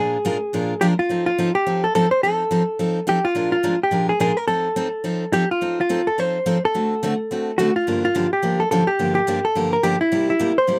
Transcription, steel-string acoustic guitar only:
0.00 0.16 A#2 medium
0.00 0.16 F3 medium
0.00 0.17 G#3 medium
0.00 0.17 D4 soft
0.00 0.17 F4 medium
0.00 0.17 A#4 medium
0.25 0.36 A#2 medium
0.25 0.36 F3 medium
0.25 0.36 G#3 medium
0.25 0.36 D4 medium
0.25 0.36 F4 medium
0.25 0.36 A#4 medium
0.53 0.73 A#2 medium
0.53 0.73 F3 medium
0.53 0.73 G#3 medium
0.53 0.73 D4 medium
0.53 0.73 F4 medium
0.53 0.73 A#4 medium
0.81 0.92 A#2 medium
0.81 0.92 F3 medium
0.81 0.93 G#3 medium
0.81 0.93 D4 medium
0.81 0.93 F4 medium
0.81 0.93 A#4 medium
1.09 1.29 F3 medium
1.09 1.29 C4 medium
1.09 1.30 D#4 medium
1.09 1.30 A4 medium
1.38 1.49 F3 medium
1.38 1.49 C4 medium
1.38 1.49 D#4 medium
1.38 1.50 A4 medium
1.67 1.86 F3 medium
1.67 1.86 C4 medium
1.67 1.86 D#4 medium
1.67 1.86 A4 medium
1.95 2.06 F3 medium
1.95 2.06 C4 medium
1.95 2.06 D#4 medium
1.95 2.06 A4 medium
2.23 2.42 F3 soft
2.23 2.43 C4 medium
2.23 2.43 D#4 medium
2.23 2.43 A4 medium
2.51 2.62 F3 medium
2.51 2.62 C4 medium
2.51 2.62 D#4 medium
2.51 2.62 A4 medium
2.79 2.98 F3 medium
2.79 2.98 C4 medium
2.79 2.99 D#4 medium
2.79 2.99 A4 medium
3.07 3.18 F3 medium
3.07 3.18 C4 medium
3.07 3.18 D#4 medium
3.07 3.18 A4 medium
3.35 3.54 A#2 medium
3.35 3.54 F3 soft
3.35 3.54 G#3 medium
3.35 3.55 D4 medium
3.35 3.55 F4 medium
3.35 3.55 A#4 medium
3.63 3.74 A#2 medium
3.63 3.74 F3 medium
3.63 3.75 G#3 medium
3.63 3.74 D4 medium
3.63 3.75 F4 medium
3.63 3.75 A#4 medium
3.91 4.11 A#2 medium
3.91 4.11 F3 medium
3.91 4.11 G#3 medium
3.91 4.11 D4 medium
3.91 4.11 F4 medium
3.91 4.11 A#4 medium
4.20 4.31 A#2 medium
4.20 4.31 F3 medium
4.20 4.31 G#3 medium
4.20 4.31 D4 medium
4.20 4.31 F4 medium
4.20 4.31 A#4 medium
4.48 4.67 F3 soft
4.48 4.67 C4 medium
4.48 4.68 D#4 medium
4.48 4.68 A4 medium
4.76 4.87 F3 medium
4.76 4.87 C4 medium
4.76 4.87 D#4 medium
4.76 4.87 A4 medium
5.04 5.23 F3 medium
5.04 5.24 C4 medium
5.04 5.24 D#4 medium
5.04 5.24 A4 medium
5.33 5.44 F3 medium
5.33 5.44 C4 medium
5.33 5.44 D#4 medium
5.33 5.44 A4 medium
5.61 5.80 F3 soft
5.61 5.81 C4 medium
5.61 5.81 D#4 soft
5.61 5.81 A4 medium
5.89 6.00 F3 medium
5.89 6.00 C4 medium
5.89 6.00 D#4 medium
5.89 6.01 A4 medium
6.18 6.37 F3 medium
6.18 6.37 C4 medium
6.18 6.37 D#4 medium
6.18 6.38 A4 medium
6.46 6.57 F3 medium
6.46 6.57 C4 medium
6.46 6.57 D#4 medium
6.46 6.57 A4 medium
6.74 6.93 D3 medium
6.74 6.94 A3 medium
6.74 6.94 C4 medium
6.74 6.94 F#4 soft
6.74 6.94 A4 medium
7.03 7.13 D3 medium
7.03 7.14 A3 medium
7.03 7.13 C4 medium
7.03 7.14 F#4 medium
7.03 7.14 A4 medium
7.31 7.50 D3 medium
7.31 7.50 A3 medium
7.31 7.50 C4 medium
7.31 7.50 F#4 medium
7.31 7.51 A4 medium
7.59 7.69 D3 medium
7.59 7.70 A3 medium
7.59 7.70 C4 medium
7.59 7.70 F#4 medium
7.59 7.70 A4 medium
7.87 8.06 G2 medium
7.87 8.06 D3 medium
7.87 8.07 F3 soft
7.87 8.07 A#3 medium
7.87 8.07 D4 medium
7.87 8.07 G4 medium
8.15 8.26 G2 medium
8.15 8.26 D3 medium
8.15 8.26 F3 medium
8.15 8.26 A#3 medium
8.15 8.26 D4 medium
8.15 8.26 G4 medium
8.42 8.62 G2 medium
8.42 8.62 D3 medium
8.42 8.62 F3 medium
8.42 8.63 A#3 medium
8.42 8.63 D4 medium
8.42 8.63 G4 medium
8.71 8.82 G2 medium
8.71 8.82 D3 medium
8.71 8.83 F3 medium
8.71 8.83 A#3 medium
8.71 8.83 D4 medium
8.71 8.83 G4 medium
8.99 9.19 G2 soft
8.99 9.19 D3 medium
8.99 9.19 F3 medium
8.99 9.19 A#3 medium
8.99 9.19 D4 medium
8.99 9.19 G4 medium
9.27 9.38 G2 medium
9.27 9.38 D3 medium
9.27 9.39 F3 medium
9.27 9.39 A#3 medium
9.27 9.39 D4 medium
9.27 9.39 G4 medium
9.55 9.75 G2 medium
9.55 9.75 D3 medium
9.55 9.75 F3 soft
9.55 9.76 A#3 medium
9.55 9.76 D4 medium
9.55 9.76 G4 medium
9.83 9.95 G2 medium
9.83 9.95 D3 medium
9.83 9.95 F3 medium
9.83 9.95 A#3 medium
9.83 9.95 D4 medium
9.83 9.95 G4 medium
10.12 10.31 C3 medium
10.12 10.32 G3 medium
10.12 10.32 A#3 medium
10.12 10.32 E4 medium
10.12 10.32 G4 medium
10.39 10.51 C3 medium
10.39 10.51 G3 medium
10.39 10.52 A#3 medium
10.39 10.52 E4 medium
10.39 10.52 G4 medium
10.67 10.79 C3 soft
10.67 10.79 G3 medium
10.67 10.79 A#3 medium
10.67 10.79 E4 medium
10.67 10.79 G4 medium

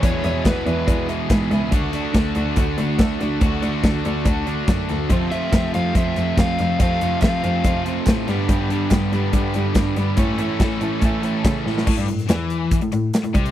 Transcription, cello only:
0.03 0.18 E2 medium
0.25 0.39 E2 medium
0.46 0.60 E2 medium
0.67 0.82 E2 medium
0.88 1.17 E2 medium
1.30 1.45 G#2 medium
1.52 1.66 C#2 medium
1.72 2.01 D2 medium
2.15 2.29 D2 medium
2.36 2.51 D2 medium
2.57 2.72 D2 medium
2.78 2.93 D2 medium
2.99 3.14 D2 medium
3.21 3.36 D2 medium
3.42 3.56 D2 medium
3.63 3.78 D2 medium
3.84 3.99 D2 medium
4.06 4.21 D2 medium
4.26 4.55 D2 medium
4.68 4.83 F#2 medium
4.90 5.05 D2 medium
5.10 5.40 F2 medium
5.53 5.68 F2 medium
5.75 5.90 F2 medium
5.95 6.10 F2 medium
6.17 6.32 F2 medium
6.38 6.52 F2 medium
6.60 6.75 F2 medium
6.80 6.94 F2 medium
7.02 7.16 F2 medium
7.23 7.37 F2 medium
7.44 7.59 F2 medium
7.65 7.94 F2 loud
8.07 8.22 A2 medium
8.28 8.43 G2 medium
8.49 8.78 G2 medium
8.91 9.06 G2 medium
9.13 9.27 G2 medium
9.34 9.48 G2 medium
9.56 9.70 G2 medium
9.76 9.91 G2 medium
9.97 10.12 G2 medium
10.18 10.33 A2 medium
10.39 10.54 A2 medium
10.60 10.75 A2 medium
10.82 10.96 A2 medium
11.02 11.32 A2 medium
11.45 11.59 C#3 medium
11.66 11.81 A2 medium
11.87 11.97 A2 medium
11.98 12.08 G2 medium
12.09 12.28 A2 medium
12.29 12.79 E2 loud
12.82 12.92 A2 medium
12.93 13.13 A2 medium
13.25 13.34 A2 medium
13.35 13.51 C2 medium

